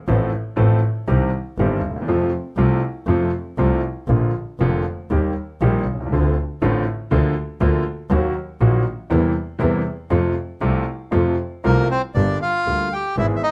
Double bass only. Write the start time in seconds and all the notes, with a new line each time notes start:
0.08 A1
0.58 A1
1.08 C2
1.58 G1
1.83 D#2
2.07 F2
2.57 C2
3.07 F2
3.58 C2
4.08 A#1
4.60 F1
5.10 D#2
5.61 A#1
5.87 C2
6.12 D2
6.62 A1
7.12 D2
7.61 D2
8.10 D#2
8.61 A#1
9.11 E2
9.61 E2
10.11 F2
10.61 C2
11.13 F2
11.65 C2
12.15 G1
12.66 D2
13.17 G#1